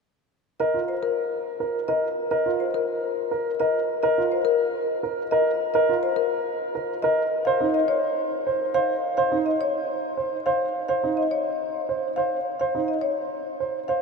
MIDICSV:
0, 0, Header, 1, 3, 480
1, 0, Start_track
1, 0, Tempo, 571429
1, 502, Time_signature, 3, 2, 24, 8
1, 11776, End_track
2, 0, Start_track
2, 0, Title_t, "Marimba"
2, 0, Program_c, 0, 12
2, 501, Note_on_c, 0, 75, 54
2, 658, Note_off_c, 0, 75, 0
2, 742, Note_on_c, 0, 72, 46
2, 862, Note_on_c, 0, 70, 58
2, 898, Note_off_c, 0, 72, 0
2, 1018, Note_off_c, 0, 70, 0
2, 1580, Note_on_c, 0, 75, 63
2, 1738, Note_off_c, 0, 75, 0
2, 1940, Note_on_c, 0, 75, 55
2, 2098, Note_off_c, 0, 75, 0
2, 2185, Note_on_c, 0, 72, 48
2, 2305, Note_on_c, 0, 70, 61
2, 2339, Note_off_c, 0, 72, 0
2, 2459, Note_off_c, 0, 70, 0
2, 3021, Note_on_c, 0, 75, 58
2, 3178, Note_off_c, 0, 75, 0
2, 3383, Note_on_c, 0, 75, 61
2, 3538, Note_off_c, 0, 75, 0
2, 3625, Note_on_c, 0, 72, 51
2, 3736, Note_on_c, 0, 70, 62
2, 3779, Note_off_c, 0, 72, 0
2, 3896, Note_off_c, 0, 70, 0
2, 4462, Note_on_c, 0, 75, 64
2, 4618, Note_off_c, 0, 75, 0
2, 4820, Note_on_c, 0, 75, 61
2, 4978, Note_off_c, 0, 75, 0
2, 5064, Note_on_c, 0, 72, 55
2, 5177, Note_on_c, 0, 70, 64
2, 5219, Note_off_c, 0, 72, 0
2, 5336, Note_off_c, 0, 70, 0
2, 5901, Note_on_c, 0, 75, 70
2, 6058, Note_off_c, 0, 75, 0
2, 6259, Note_on_c, 0, 77, 60
2, 6417, Note_off_c, 0, 77, 0
2, 6504, Note_on_c, 0, 75, 55
2, 6621, Note_on_c, 0, 73, 64
2, 6659, Note_off_c, 0, 75, 0
2, 6778, Note_off_c, 0, 73, 0
2, 7345, Note_on_c, 0, 77, 70
2, 7499, Note_off_c, 0, 77, 0
2, 7704, Note_on_c, 0, 77, 62
2, 7859, Note_off_c, 0, 77, 0
2, 7945, Note_on_c, 0, 75, 53
2, 8070, Note_on_c, 0, 73, 66
2, 8099, Note_off_c, 0, 75, 0
2, 8221, Note_off_c, 0, 73, 0
2, 8785, Note_on_c, 0, 77, 67
2, 8939, Note_off_c, 0, 77, 0
2, 9143, Note_on_c, 0, 77, 62
2, 9298, Note_off_c, 0, 77, 0
2, 9384, Note_on_c, 0, 75, 54
2, 9502, Note_on_c, 0, 73, 57
2, 9539, Note_off_c, 0, 75, 0
2, 9658, Note_off_c, 0, 73, 0
2, 10216, Note_on_c, 0, 77, 59
2, 10376, Note_off_c, 0, 77, 0
2, 10580, Note_on_c, 0, 77, 54
2, 10738, Note_off_c, 0, 77, 0
2, 10820, Note_on_c, 0, 75, 43
2, 10932, Note_on_c, 0, 73, 57
2, 10978, Note_off_c, 0, 75, 0
2, 11095, Note_off_c, 0, 73, 0
2, 11660, Note_on_c, 0, 77, 57
2, 11776, Note_off_c, 0, 77, 0
2, 11776, End_track
3, 0, Start_track
3, 0, Title_t, "Grand piano"
3, 0, Program_c, 1, 0
3, 505, Note_on_c, 1, 70, 64
3, 624, Note_on_c, 1, 65, 45
3, 659, Note_off_c, 1, 70, 0
3, 779, Note_off_c, 1, 65, 0
3, 1346, Note_on_c, 1, 70, 47
3, 1499, Note_off_c, 1, 70, 0
3, 1584, Note_on_c, 1, 70, 58
3, 1739, Note_off_c, 1, 70, 0
3, 1942, Note_on_c, 1, 70, 60
3, 2065, Note_on_c, 1, 65, 49
3, 2098, Note_off_c, 1, 70, 0
3, 2219, Note_off_c, 1, 65, 0
3, 2784, Note_on_c, 1, 70, 51
3, 2939, Note_off_c, 1, 70, 0
3, 3026, Note_on_c, 1, 70, 62
3, 3179, Note_off_c, 1, 70, 0
3, 3388, Note_on_c, 1, 70, 68
3, 3511, Note_on_c, 1, 65, 49
3, 3540, Note_off_c, 1, 70, 0
3, 3661, Note_off_c, 1, 65, 0
3, 4228, Note_on_c, 1, 70, 51
3, 4380, Note_off_c, 1, 70, 0
3, 4470, Note_on_c, 1, 70, 67
3, 4621, Note_off_c, 1, 70, 0
3, 4829, Note_on_c, 1, 70, 70
3, 4950, Note_on_c, 1, 65, 52
3, 4981, Note_off_c, 1, 70, 0
3, 5101, Note_off_c, 1, 65, 0
3, 5670, Note_on_c, 1, 70, 57
3, 5821, Note_off_c, 1, 70, 0
3, 5913, Note_on_c, 1, 70, 65
3, 6062, Note_off_c, 1, 70, 0
3, 6274, Note_on_c, 1, 72, 70
3, 6389, Note_on_c, 1, 63, 50
3, 6422, Note_off_c, 1, 72, 0
3, 6540, Note_off_c, 1, 63, 0
3, 7112, Note_on_c, 1, 72, 56
3, 7262, Note_off_c, 1, 72, 0
3, 7345, Note_on_c, 1, 72, 67
3, 7499, Note_off_c, 1, 72, 0
3, 7709, Note_on_c, 1, 72, 69
3, 7827, Note_on_c, 1, 63, 49
3, 7861, Note_off_c, 1, 72, 0
3, 7980, Note_off_c, 1, 63, 0
3, 8546, Note_on_c, 1, 72, 51
3, 8700, Note_off_c, 1, 72, 0
3, 8790, Note_on_c, 1, 72, 64
3, 8941, Note_off_c, 1, 72, 0
3, 9147, Note_on_c, 1, 72, 65
3, 9270, Note_on_c, 1, 63, 49
3, 9300, Note_off_c, 1, 72, 0
3, 9421, Note_off_c, 1, 63, 0
3, 9988, Note_on_c, 1, 72, 50
3, 10140, Note_off_c, 1, 72, 0
3, 10227, Note_on_c, 1, 72, 55
3, 10380, Note_off_c, 1, 72, 0
3, 10591, Note_on_c, 1, 72, 60
3, 10708, Note_on_c, 1, 63, 44
3, 10741, Note_off_c, 1, 72, 0
3, 10860, Note_off_c, 1, 63, 0
3, 11427, Note_on_c, 1, 72, 50
3, 11580, Note_off_c, 1, 72, 0
3, 11668, Note_on_c, 1, 72, 54
3, 11776, Note_off_c, 1, 72, 0
3, 11776, End_track
0, 0, End_of_file